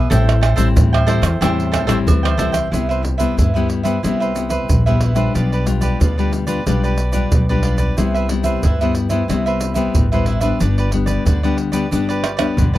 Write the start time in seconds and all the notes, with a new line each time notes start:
0.10 A1 A2 G3 C4 E4 A4 C5 E5 G5, pandeiro, shaker, surdo
0.29 pandeiro, tamborim, shaker
0.41 A4 C5 E5 G5, pandeiro, tamborim, low agogo
0.56 A1 G3 C4 E4 A4 C5 E5 G5, pandeiro, shaker, surdo
0.76 A2 E3, pandeiro, shaker, surdo
0.93 C5 E5 G5, pandeiro, tamborim, high agogo, shaker
1.07 G3 C4 E4 A4 C5 E5 G5, pandeiro, tamborim
1.22 E2, pandeiro, tamborim, shaker, surdo
1.41 E2 A2 G3 C4 E4 A4 C5 E5 G5, pandeiro, tamborim, low agogo, shaker, surdo
1.60 pandeiro, shaker
1.72 A4 C5 E5 G5, pandeiro, tamborim, low agogo, shaker, surdo
1.87 A1 G3 C4 E4 A4 C5 E5 G5, pandeiro, tamborim, shaker, surdo
2.07 D2 E3, pandeiro, high agogo, shaker, surdo
2.23 C5 E5 G5, pandeiro, tamborim, high agogo, shaker
2.37 C2 G3 C4 E4 A4 C5 E5 G5, pandeiro, high agogo, shaker
2.52 C5 E5 G5, pandeiro, tamborim, shaker, surdo
2.71 C2 C3 G3 B3 E4 B4 C5 E5, pandeiro, shaker, surdo
2.89 B4 C5 E5, pandeiro, shaker
3.03 muted cavaquinho stroke, pandeiro, surdo
3.18 G3 B3 E4 B4 C5 E5, pandeiro, shaker, surdo
3.37 G2 E4 B4 C5 E5, pandeiro, shaker, surdo
3.54 G3 B3 E4 B4 C5 E5, pandeiro, shaker
3.69 muted cavaquinho stroke, pandeiro
3.83 G3 B3 E4 B4 C5 E5, pandeiro, shaker, surdo
4.03 C2 C3 G3 B3 E4 B4 C5 E5, pandeiro, shaker, surdo
4.20 B4 C5 E5, pandeiro, shaker
4.36 G3 B3 E4, pandeiro, shaker
4.49 B4 C5 E5, pandeiro, shaker, surdo
4.69 A#1 G2, pandeiro, shaker, surdo
4.86 G3 B3 E4 B4 C5 E5, pandeiro, shaker
5.00 E4 B4 C5 E5, pandeiro
5.15 G3 D4 F4 B4 C5 E5, pandeiro, shaker, surdo
5.35 B1 B2 F4 G4 B4 D5, pandeiro, shaker, surdo
5.52 G4 B4 D5, pandeiro, shaker
5.66 G3 D4 F4, muted cavaquinho stroke, pandeiro, shaker, surdo
5.81 G4 B4 D5, pandeiro, shaker, surdo
6.00 D2 B2 F4 G4 B4 D5, pandeiro, shaker, surdo
6.18 G3 D4 F4 G4 B4 D5, pandeiro, shaker
6.33 muted cavaquinho stroke, pandeiro, shaker
6.47 G3 D4 F4 G4 B4 D5, pandeiro, shaker, surdo
6.66 B1 B2 G3 D4 F4 G4 B4 D5, pandeiro, shaker, surdo
6.83 G4 B4 D5, pandeiro, shaker
6.98 pandeiro, shaker
7.12 G3 D4 F4 G4 B4 D5, pandeiro, shaker, surdo
7.32 B1 B2, pandeiro, shaker, surdo
7.49 G3 D4 F4 G4 B4 D5, pandeiro, shaker
7.63 F4 G4 B4 D5, pandeiro
7.78 G4 B4 D5, pandeiro, shaker, surdo
7.97 C2 C3 G3 B3 E4 B4 C5 E5, pandeiro, shaker, surdo
8.14 B4 C5 E5, pandeiro, shaker
8.29 G3 B3 E4, muted cavaquinho stroke, pandeiro
8.44 B4 C5 E5, pandeiro, shaker, surdo
8.63 G2 E4 B4 C5 E5, pandeiro, shaker, surdo
8.81 G3 B3 E4 B4 C5 E5, pandeiro, shaker
8.95 muted cavaquinho stroke, pandeiro, shaker
9.09 G3 B3 E4 B4 C5 E5, pandeiro, shaker, surdo
9.28 C2 C3 G3 B3 E4 B4 C5 E5, pandeiro, shaker, surdo
9.46 B4 C5 E5, pandeiro, shaker
9.61 pandeiro, shaker
9.74 G3 B3 E4 B4 C5 E5, pandeiro, shaker, surdo
9.95 A1 G2, pandeiro, shaker, surdo
10.12 G3 B3 E4 B4 C5 E5, pandeiro, shaker
10.25 E4 B4 C5 E5, pandeiro
10.41 G3 B3 D4 B4 C5 E5, pandeiro, shaker, surdo
10.60 G1 G2 D4 G4 B4 D5, pandeiro, shaker, surdo
10.78 G4 B4 D5, pandeiro, shaker
10.91 G3 B3 D4, muted cavaquinho stroke, pandeiro, surdo
11.06 G4 B4 D5, pandeiro, shaker, surdo
11.25 D2 D3 D4 G4 B4 D5, pandeiro, shaker, surdo
11.43 G3 B3 D4 G4 B4 D5, pandeiro, shaker
11.57 muted cavaquinho stroke, pandeiro
11.72 G3 B3 D4 G4 B4 D5, pandeiro, shaker, surdo
11.91 G1 G2 G3 B3 D4 G4 B4 D5, pandeiro, shaker, surdo
12.09 G4 B4 D5, pandeiro, shaker
12.24 pandeiro, tamborim
12.37 G3 B3 D4 G4 B4 D5, pandeiro, tamborim, shaker, surdo
12.57 B1 D3, surdo, pandeiro, shaker
12.73 B4 D5